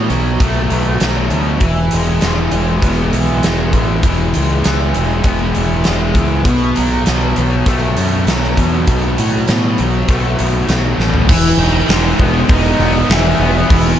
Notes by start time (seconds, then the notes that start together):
Already playing: B2
0.09 B1 F#3, closed hi-hat
0.40 B1 A3, kick, closed hi-hat
0.70 B1 B2, closed hi-hat
1.00 B1 F#3, snare, closed hi-hat
1.30 D2 B2, closed hi-hat
1.60 E1 E3, kick, closed hi-hat
1.91 E1 G#3, closed hi-hat
2.21 E1 E3, snare, closed hi-hat
2.51 E1 G#3, closed hi-hat
2.82 E1 B3, kick, closed hi-hat
3.12 B1 E3, closed hi-hat
3.43 E1 G#3, snare, closed hi-hat
3.73 A1 E3, kick, closed hi-hat
4.03 E1 E3, kick, closed hi-hat
4.34 C#2 G#3, closed hi-hat
4.63 C#2 E3, snare, closed hi-hat
4.93 E1 G#3, closed hi-hat
5.24 E1 B3, kick, closed hi-hat
5.54 E1 E3, closed hi-hat
5.84 E1 G#3, snare, closed hi-hat
6.14 C#2 E3, kick, closed hi-hat
6.45 B1 B2, kick, closed hi-hat
6.76 B1 F#3, closed hi-hat
7.06 B1 B2, snare, closed hi-hat
7.36 B1 F#3, closed hi-hat
7.66 B1 A3, kick, closed hi-hat
7.97 F#2 B2, closed hi-hat
8.27 B1 F#3, snare, closed hi-hat
8.44 snare
8.57 E2 B2, kick, closed hi-hat
8.87 B1 B2, kick, closed hi-hat
9.18 A2 F#3, closed hi-hat
9.47 A2 B2, snare, closed hi-hat
9.78 B1 F#3, closed hi-hat
10.08 B1 A3, kick, closed hi-hat
10.39 B1 B2, closed hi-hat
10.69 B1 F#3, snare, closed hi-hat
10.98 A1 B2, snare
11.14 floor tom
11.29 E1 E3, kick, crash
11.57 E1 D#4
11.88 E1 G#3, snare, open hi-hat
12.18 E1 B3, kick
12.49 E1 D#4, kick, open hi-hat
12.80 E1 B3
13.09 E1 E3, snare, open hi-hat
13.39 E1 B3
13.70 E1 E3, kick, open hi-hat